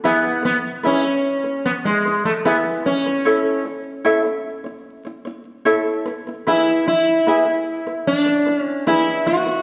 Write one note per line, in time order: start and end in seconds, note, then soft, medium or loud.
0.04 0.44 B3 medium
0.04 0.43 E4 medium
0.04 0.44 G#4 medium
0.04 0.41 B4 medium
0.04 0.42 E5 medium
0.43 0.56 B3 medium
0.43 0.77 E4 medium
0.43 0.76 B4 medium
0.83 1.68 C#4 medium
0.83 1.04 E4 medium
0.83 1.05 G#4 medium
0.83 1.02 B4 medium
0.83 1.03 E5 medium
1.03 1.37 E4 soft
1.03 1.36 B4 soft
1.44 1.78 E4 soft
1.44 1.76 B4 soft
1.66 1.71 B3 medium
1.84 2.25 G#3 medium
1.84 2.05 E4 soft
1.84 2.04 B4 soft
2.05 2.38 E4 soft
2.05 2.37 B4 soft
2.25 2.31 A3 medium
2.45 2.56 B3 medium
2.45 2.85 E4 medium
2.45 2.86 G#4 medium
2.45 2.84 B4 medium
2.45 2.85 E5 medium
2.86 3.62 C#4 medium
2.86 3.06 E4 medium
2.86 3.05 B4 soft
3.06 3.25 E4 soft
3.06 3.26 B4 soft
3.25 3.66 E4 medium
3.25 3.66 A4 medium
3.25 3.64 C#5 medium
3.25 3.65 E5 medium
3.65 3.98 E4 medium
3.65 3.97 C#5 medium
4.04 4.25 E4 medium
4.04 4.25 A4 medium
4.04 4.23 C#5 medium
4.04 4.24 E5 medium
4.24 4.58 E4 medium
4.24 4.57 C#5 soft
4.64 4.98 E4 medium
4.64 4.97 C#5 soft
5.05 5.26 E4 soft
5.05 5.24 C#5 soft
5.25 5.58 E4 medium
5.25 5.57 C#5 medium
5.65 6.06 E4 medium
5.65 6.06 A4 medium
5.65 6.06 C#5 medium
5.65 6.05 E5 medium
6.06 6.27 E4 medium
6.06 6.26 B4 medium
6.27 6.46 E4 medium
6.27 6.45 B4 soft
6.47 6.87 E4 medium
6.47 6.86 E4 medium
6.47 6.87 G#4 medium
6.47 6.85 B4 medium
6.47 6.87 E5 medium
6.86 8.03 E4 medium
6.86 7.19 E4 medium
6.86 7.18 B4 medium
7.27 7.47 E4 medium
7.27 7.47 G#4 medium
7.27 7.45 B4 medium
7.27 7.46 E5 medium
7.46 7.79 E4 soft
7.46 7.78 B4 soft
7.87 8.19 E4 soft
7.87 8.18 B4 soft
8.07 8.59 D4 medium
8.26 8.47 E4 soft
8.26 8.45 B4 soft
8.46 8.79 E4 medium
8.46 8.78 B4 medium
8.59 8.83 C#4 medium
8.87 9.27 E4 medium
8.87 9.28 E4 medium
8.87 9.27 G#4 medium
8.87 9.25 B4 medium
8.87 9.26 E5 medium
9.26 9.47 E4 medium
9.26 9.62 F#4 medium
9.26 9.45 B4 medium
9.46 9.62 E4 soft
9.46 9.62 B4 soft